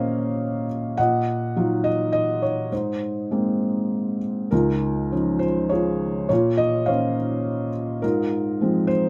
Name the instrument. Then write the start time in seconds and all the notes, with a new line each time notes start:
felt piano
Already playing: A#2 A#3 C#4 C5 C#5 D#5 F5
0.97 A#2 D#5 F#5
1.56 F#3 D#4 F4
1.84 D#5
2.12 D#5
2.42 C#5
2.72 G#2 D#4 C5
3.31 G#3 A#3 C4
4.51 C#2 D#4 F4 A#4
5.12 F3 C#4 D#4
5.39 C5
5.69 F4 G#4 C#5
6.29 A#2 F4 C#5
6.57 D#5
6.86 A#3 C#4 C5 C#5 F5
8.02 G#2 D#4 F4 A#4
8.61 F3 G#3 C4
8.87 C5